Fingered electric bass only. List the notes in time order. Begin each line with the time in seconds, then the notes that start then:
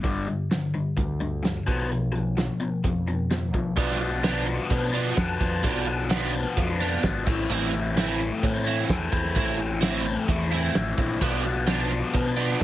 0.04 G1
0.98 D2
1.68 B1
2.84 F2
3.54 B1
3.77 B1
4.70 B2
5.17 F2
5.40 F2
5.64 B1
6.57 F2
7.03 G#1
7.27 A1
7.50 A1
8.43 A2
8.89 E2
9.12 E2
9.36 A1
10.28 E2
10.75 A1
10.98 A#1
11.21 B1
12.14 B2
12.61 F2